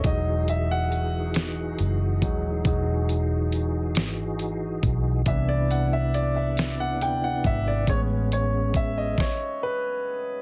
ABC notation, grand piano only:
X:1
M:6/8
L:1/16
Q:3/8=46
K:E
V:1 name="Grand piano"
d2 e f8- f- | f z8 z3 | e =d f e d e2 f =g f e d | c2 c2 e d c2 B4 |]
V:2 name="Grand piano" clef=bass
[F,G,D]8- [F,G,D]2 [F,G,D]2 | [F,G,D]12 | [E,B,=D]12 | [G,B,C]2 z8 z2 |]